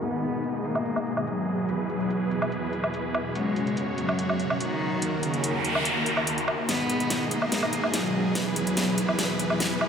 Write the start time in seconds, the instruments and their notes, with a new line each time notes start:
Already playing: supersaw synth D#3
0.02 supersaw synth G#2 B2 G#4 D#5, cello B3, closed hi-hat
0.23 closed hi-hat
0.34 closed hi-hat
0.44 closed hi-hat
0.64 cello A#3, closed hi-hat
0.75 low woodblock
0.85 closed hi-hat
0.96 low woodblock
1.06 closed hi-hat
1.17 low woodblock
1.27 cello F#3, closed hi-hat
1.69 supersaw synth E2 E3 B4, closed hi-hat
1.89 cello F#3, closed hi-hat
2.00 closed hi-hat
2.10 closed hi-hat
2.31 closed hi-hat
2.42 low woodblock
2.52 closed hi-hat
2.73 closed hi-hat
2.84 low woodblock
2.94 closed hi-hat
3.15 low woodblock
3.35 supersaw synth F#2 C#3 F#4 C#5, cello G#3, closed hi-hat
3.56 closed hi-hat
3.67 closed hi-hat
3.77 closed hi-hat
3.98 cello F#3, closed hi-hat
4.09 low woodblock
4.19 closed hi-hat
4.30 low woodblock
4.40 closed hi-hat
4.50 low woodblock
4.60 cello D#3, closed hi-hat
5.02 supersaw synth D#2 D#3 A#3 A#4, closed hi-hat, noise sweep
5.23 cello C#3, closed hi-hat
5.34 closed hi-hat
5.44 closed hi-hat
5.65 closed hi-hat
5.75 low woodblock
5.85 closed hi-hat
6.06 closed hi-hat
6.17 low woodblock
6.27 closed hi-hat
6.38 closed hi-hat
6.48 low woodblock
6.69 supersaw synth G#2 B2 D#3 G#4 D#5, cello B3, snare, closed hi-hat, riser
6.90 closed hi-hat
7.00 closed hi-hat
7.10 snare, closed hi-hat
7.31 cello A#3, closed hi-hat
7.42 low woodblock
7.52 snare, closed hi-hat
7.63 low woodblock
7.73 closed hi-hat
7.84 low woodblock
7.94 cello F#3, snare, closed hi-hat
8.35 supersaw synth E2 E3 B4, snare, closed hi-hat
8.56 cello F#3, closed hi-hat
8.67 closed hi-hat
8.77 snare, closed hi-hat
8.98 closed hi-hat
9.09 low woodblock
9.19 snare, closed hi-hat
9.39 closed hi-hat
9.50 low woodblock
9.60 snare, closed hi-hat
9.81 low woodblock